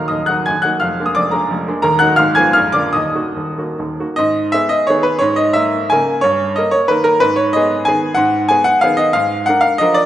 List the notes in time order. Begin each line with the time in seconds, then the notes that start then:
Already playing: F#3 A#3 D#4 F5 F6
0.08 D#1 D#2 D#5 D#6
0.26 F#3 A#3 D#4 F#5 F#6
0.46 D#1 D#2 G#5 G#6
0.62 F#3 A#3 D#4 F#5 F#6
0.80 F1 F2 F5 F6
0.99 G#3 A#3 D4
1.06 D#6
1.15 F1 F2 D5 D6
1.31 G#3 A#3 D4 A#4 A#5
1.51 F1 F2
1.68 G#3 A#3 D4
1.82 D#1 D#2 A#4 A#5
1.99 F#3 A#3 D#4 F#5 F#6
2.16 G#1 G#2 F5 F6
2.35 F3 B3 F4 G#5 G#6
2.53 A#0 A#1 F5 F6
2.72 D3 A#3 F4 D5 D6
2.93 D#1 D#2 D#5 D#6
3.15 D#3 A#3 F#4
3.36 D#1 D#2
3.58 D#3 A#3 F#4
3.79 D#1 D#2
3.99 D#3 A#3 F#4
4.16 G#2 D#5
4.52 B3 G#4 E5
4.69 D#5
4.87 D#3 B3 G#4 C#5
5.03 B4
5.19 G#2 C#5
5.36 D#5
5.53 A#3 A#4 E5
5.90 C#3 A#3 A#4 G#5
6.21 G2 C#5
6.56 A#3 A#4 D#5
6.71 C#5
6.88 D#3 A#3 A#4 B4
7.04 A#4
7.20 G#2 B4
7.36 C#5
7.53 B3 G#4 D#5
7.85 D#3 B3 G#4 G#5
8.15 G#2 F#5
8.49 B3 G#4 G#5
8.64 F#5
8.81 D#3 B3 G#4 F5
8.97 D#5
9.13 G#2 F5
9.46 D4 A#4 F#5
9.61 F5
9.78 F3 D4 A#4 D#5
9.94 D5